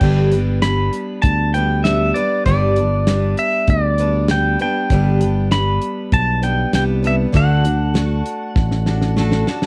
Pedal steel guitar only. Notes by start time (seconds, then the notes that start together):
Already playing: G5
0.62 B5
1.22 A5
1.54 G5
1.84 E5
2.14 D5
2.46 D5
3.39 E5
3.70 D5
4.31 G5
4.62 G5
5.52 B5
6.13 A5
6.43 G5
6.75 G5
7.07 E5
7.37 F#5